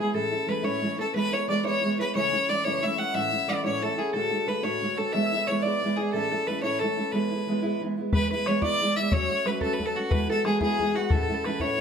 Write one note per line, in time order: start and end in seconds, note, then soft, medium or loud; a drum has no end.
0.00 0.14 G#3 soft
0.00 0.15 B3 medium
0.00 0.14 E4 medium
0.00 0.14 G#4 medium
0.00 0.20 G#4 medium
0.13 0.32 A2 medium
0.13 0.33 E3 medium
0.13 0.33 A3 medium
0.13 0.32 C#4 medium
0.13 0.30 E4 medium
0.13 0.98 A4 medium
0.13 0.52 A4 medium
0.31 0.47 A3 soft
0.31 0.48 C#4 soft
0.31 0.48 E4 soft
0.47 0.63 E3 medium
0.47 0.63 A3 medium
0.47 0.62 C#4 medium
0.47 0.62 E4 medium
0.47 1.14 B4 medium
0.47 0.66 B4 medium
0.63 0.83 A2 medium
0.63 0.80 E3 medium
0.63 0.82 A3 medium
0.63 0.83 C#4 medium
0.63 0.82 E4 medium
0.63 1.32 C#5 medium
0.63 0.99 C#5 medium
0.81 0.98 E3 medium
0.81 0.99 A3 soft
0.81 0.98 C#4 medium
0.81 0.96 E4 medium
0.97 1.14 A3 soft
0.97 1.15 C#4 soft
0.97 1.14 E4 soft
0.97 3.18 A4 medium
0.97 1.14 A4 medium
1.14 1.33 E3 medium
1.14 1.33 G#3 medium
1.14 1.32 B3 medium
1.14 1.31 E4 medium
1.14 1.99 B4 medium
1.14 1.35 B4 loud
1.32 1.48 G#3 soft
1.32 1.49 B3 soft
1.32 1.48 E4 medium
1.32 1.54 C#5 medium
1.32 1.49 C#5 medium
1.48 1.64 E3 medium
1.48 1.64 G#3 medium
1.48 1.63 B3 medium
1.48 1.62 E4 medium
1.48 1.71 D5 medium
1.48 1.64 D5 medium
1.64 1.81 E3 medium
1.64 1.83 G#3 medium
1.64 1.83 B3 medium
1.64 1.83 E4 medium
1.64 1.96 C#5 medium
1.64 2.15 C#5 medium
1.83 1.99 E3 medium
1.83 1.99 G#3 medium
1.83 1.99 B3 medium
1.83 1.98 E4 medium
1.99 2.16 G#3 soft
1.99 2.15 B3 soft
1.99 2.15 E4 medium
1.99 4.04 B4 medium
1.99 2.14 B4 medium
2.14 2.33 F#2 medium
2.14 2.33 C#3 medium
2.14 2.33 E3 medium
2.14 2.34 A3 medium
2.14 2.33 C#4 medium
2.14 2.32 E4 medium
2.14 2.55 C#5 medium
2.14 2.51 C#5 loud
2.33 2.48 E3 soft
2.33 2.50 A3 soft
2.33 2.49 C#4 soft
2.33 2.49 E4 medium
2.49 2.65 E3 medium
2.49 2.66 A3 medium
2.49 2.65 C#4 medium
2.49 2.64 E4 medium
2.49 2.71 D5 medium
2.49 2.66 D5 medium
2.64 2.84 F#2 medium
2.64 2.84 C#3 medium
2.64 2.82 E3 medium
2.64 2.83 A3 medium
2.64 2.84 C#4 medium
2.64 2.83 E4 medium
2.64 2.85 C#5 loud
2.64 3.54 C#5 medium
2.83 2.99 E3 medium
2.83 2.99 A3 medium
2.83 2.98 C#4 medium
2.83 2.97 E4 medium
2.83 3.00 E5 medium
2.83 3.14 E5 medium
2.98 3.13 E3 soft
2.98 3.14 A3 soft
2.98 3.15 C#4 soft
2.98 3.14 E4 soft
2.98 3.16 F#5 medium
2.98 4.60 F#5 medium
3.14 3.32 A2 medium
3.14 3.33 E3 medium
3.14 3.33 A3 medium
3.14 3.33 C#4 medium
3.14 3.31 E4 medium
3.14 3.51 E5 loud
3.14 4.87 E5 medium
3.32 3.48 A3 soft
3.32 3.49 C#4 soft
3.32 3.48 E4 soft
3.47 3.64 E3 medium
3.47 3.64 A3 medium
3.47 3.63 C#4 medium
3.47 3.62 E4 medium
3.47 3.70 D5 medium
3.47 3.64 D5 medium
3.63 3.83 A2 medium
3.63 3.81 E3 medium
3.63 3.82 A3 medium
3.63 3.83 C#4 medium
3.63 3.82 E4 medium
3.63 4.64 C#5 medium
3.63 3.84 C#5 medium
3.82 3.98 E3 soft
3.82 3.99 A3 soft
3.82 3.98 C#4 medium
3.82 3.96 E4 medium
3.82 4.04 A4 medium
3.82 4.00 A4 medium
3.97 4.14 A3 soft
3.97 4.14 C#4 soft
3.97 4.14 E4 soft
3.97 4.19 G#4 medium
3.97 4.13 G#4 medium
4.13 4.33 D2 medium
4.13 4.33 A2 medium
4.13 4.33 D3 medium
4.13 4.32 A3 medium
4.13 4.31 D4 medium
4.13 4.30 F#4 medium
4.13 4.97 A4 medium
4.13 4.50 A4 medium
4.31 4.45 D3 soft
4.31 4.47 A3 soft
4.31 4.48 D4 medium
4.31 4.48 F#4 soft
4.46 4.63 D3 medium
4.46 4.63 A3 medium
4.46 4.62 D4 medium
4.46 4.62 F#4 medium
4.46 6.46 B4 medium
4.46 4.65 B4 medium
4.63 4.83 D2 medium
4.63 4.83 A2 medium
4.63 4.81 D3 medium
4.63 4.82 A3 medium
4.63 4.82 D4 medium
4.63 4.82 F#4 medium
4.63 5.00 C#5 medium
4.63 5.46 C#5 medium
4.82 4.98 D3 soft
4.82 4.98 A3 medium
4.82 4.98 D4 medium
4.82 4.96 F#4 medium
4.97 5.14 D3 soft
4.97 5.15 A3 soft
4.97 5.14 D4 soft
4.97 5.13 F#4 soft
4.97 6.03 A4 medium
4.97 5.14 A4 medium
5.13 5.32 E3 medium
5.13 5.33 G#3 medium
5.13 5.33 B3 medium
5.13 5.31 E4 medium
5.13 5.49 E5 loud
5.13 5.25 E5 medium
5.25 5.37 E5 medium
5.32 5.48 G#3 soft
5.32 5.49 B3 medium
5.32 5.48 E4 medium
5.37 7.09 E5 medium
5.47 5.64 E3 medium
5.47 5.64 G#3 medium
5.47 5.64 B3 medium
5.47 5.68 C#5 medium
5.47 5.64 C#5 medium
5.52 5.63 E4 medium
5.62 5.82 G#3 medium
5.62 5.83 B3 medium
5.62 5.82 E4 medium
5.62 5.98 D5 medium
5.62 6.68 D5 medium
5.67 5.81 E3 medium
5.82 5.98 E3 soft
5.82 5.99 G#3 medium
5.82 5.98 B3 medium
5.82 5.96 E4 medium
5.96 6.14 B3 soft
5.96 6.13 E4 soft
5.96 6.12 G#4 medium
5.96 6.19 G#4 medium
6.00 6.14 G#3 soft
6.12 6.32 A2 medium
6.12 6.32 E3 medium
6.12 6.32 A3 medium
6.12 6.32 C#4 medium
6.12 6.31 E4 medium
6.12 6.49 A4 medium
6.12 6.31 A4 medium
6.31 6.47 A3 soft
6.31 6.48 C#4 soft
6.31 6.47 E4 soft
6.31 6.80 A4 medium
6.47 6.63 E3 medium
6.47 6.63 A3 medium
6.47 6.63 C#4 medium
6.47 7.12 B4 medium
6.47 6.62 B4 medium
6.51 6.62 E4 medium
6.62 6.83 A2 medium
6.62 6.80 E3 medium
6.62 6.82 A3 medium
6.62 6.82 C#4 medium
6.62 6.82 E4 medium
6.62 8.46 C#5 medium
6.62 6.81 C#5 medium
6.80 6.97 E3 medium
6.80 6.98 A3 medium
6.80 7.14 A4 medium
6.80 9.00 A4 medium
6.84 6.98 C#4 medium
6.84 6.96 E4 medium
6.97 7.13 A3 soft
6.97 7.13 C#4 soft
6.97 7.13 E4 medium
7.12 7.31 E3 medium
7.12 7.32 G#3 medium
7.12 7.32 B3 medium
7.12 7.30 E4 medium
7.12 7.81 B4 medium
7.12 8.12 B4 medium
7.31 7.47 G#3 soft
7.31 7.48 B3 soft
7.31 7.47 E4 soft
7.47 7.63 E3 medium
7.47 7.63 G#3 medium
7.47 7.62 B3 medium
7.47 7.61 E4 medium
7.62 7.80 E3 medium
7.62 7.81 G#3 medium
7.62 7.82 B3 medium
7.62 7.81 E4 medium
7.81 7.97 E3 medium
7.81 7.97 G#3 medium
7.81 7.98 B3 medium
7.81 7.96 E4 medium
7.97 8.12 G#3 soft
7.97 8.13 B3 medium
7.97 8.13 E4 medium
8.12 8.31 E3 medium
8.12 8.31 G#3 medium
8.12 8.32 B3 medium
8.12 8.30 E4 medium
8.12 8.30 B4 medium
8.12 8.31 B4 medium
8.12 bodhran medium
8.30 8.48 B3 soft
8.30 8.47 E4 medium
8.30 9.46 B4 medium
8.30 8.49 B4 medium
8.30 bodhran soft
8.35 8.46 G#3 soft
8.46 8.62 E3 medium
8.46 8.62 G#3 medium
8.46 8.62 B3 medium
8.46 8.61 E4 medium
8.46 8.68 C#5 medium
8.46 8.62 C#5 medium
8.46 bodhran medium
8.62 8.79 E3 medium
8.62 8.81 G#3 medium
8.62 8.81 B3 medium
8.62 8.81 E4 medium
8.62 9.18 D5 medium
8.62 8.98 D5 loud
8.62 bodhran medium
8.80 8.96 E3 soft
8.80 8.97 G#3 medium
8.80 8.97 B3 medium
8.80 8.95 E4 medium
8.96 9.12 G#3 soft
8.96 9.13 B3 soft
8.96 9.12 E4 medium
8.96 10.68 E5 medium
8.96 9.15 E5 medium
9.11 9.30 F#3 medium
9.11 9.31 A3 medium
9.11 9.31 C#4 medium
9.11 9.28 F#4 medium
9.11 11.03 C#5 medium
9.11 9.49 C#5 loud
9.11 bodhran medium
9.29 9.45 A3 soft
9.29 9.46 C#4 soft
9.29 9.46 F#4 medium
9.29 bodhran soft
9.45 9.61 F#3 medium
9.45 9.62 A3 medium
9.45 9.61 C#4 medium
9.45 9.60 F#4 medium
9.45 10.11 B4 medium
9.45 9.61 B4 medium
9.45 bodhran medium
9.61 9.78 F#3 medium
9.61 9.79 A3 medium
9.61 9.80 C#4 medium
9.61 9.80 F#4 medium
9.61 9.85 A4 medium
9.61 9.75 A4 medium
9.61 bodhran medium
9.73 9.88 B4 medium
9.79 9.95 F#3 medium
9.79 9.96 A3 medium
9.79 9.96 C#4 medium
9.79 9.94 F#4 medium
9.79 bodhran soft
9.85 10.29 A4 medium
9.85 9.98 A4 medium
9.95 10.11 A3 soft
9.95 10.11 C#4 soft
9.95 10.11 F#4 soft
9.95 10.13 F#4 medium
9.95 10.95 F#4 medium
10.10 10.29 E3 medium
10.10 10.30 G#3 medium
10.10 10.29 B3 medium
10.10 10.27 E4 medium
10.10 10.30 B4 medium
10.10 11.45 B4 medium
10.10 bodhran medium
10.29 10.44 G#3 soft
10.29 10.45 B3 soft
10.29 10.45 E4 soft
10.29 10.52 A4 medium
10.29 10.45 A4 medium
10.29 bodhran soft
10.44 10.60 E3 medium
10.44 10.60 G#3 medium
10.44 10.60 B3 medium
10.44 10.59 E4 medium
10.44 10.61 G#4 medium
10.44 10.60 G#4 medium
10.44 bodhran medium
10.60 10.77 E3 medium
10.60 10.79 G#3 medium
10.60 10.79 B3 medium
10.60 10.79 E4 medium
10.60 11.16 G#4 medium
10.60 10.97 G#4 loud
10.60 bodhran medium
10.78 10.95 E3 medium
10.78 10.95 G#3 medium
10.78 10.95 B3 medium
10.78 10.93 E4 medium
10.78 bodhran soft
10.94 11.11 G#3 soft
10.94 11.11 B3 soft
10.94 11.10 E4 soft
10.94 11.81 F#4 medium
10.94 11.13 F#4 medium
11.10 11.29 A2 medium
11.10 11.29 E3 medium
11.10 11.30 A3 medium
11.10 11.29 C#4 medium
11.10 11.27 E4 medium
11.10 11.22 A4 medium
11.10 11.47 A4 medium
11.10 bodhran loud
11.23 11.34 A4 medium
11.29 11.45 A3 soft
11.29 11.46 C#4 soft
11.29 11.45 E4 medium
11.29 bodhran soft
11.34 11.81 A4 medium
11.44 11.60 E3 medium
11.44 11.60 A3 medium
11.44 11.60 C#4 medium
11.44 11.59 E4 medium
11.44 11.81 B4 medium
11.44 11.62 B4 medium
11.44 bodhran medium
11.60 11.80 A2 medium
11.60 11.77 E3 medium
11.60 11.78 A3 medium
11.60 11.79 C#4 medium
11.60 11.79 E4 medium
11.60 11.81 C#5 loud
11.60 11.81 C#5 medium
11.60 bodhran medium
11.78 11.81 E3 soft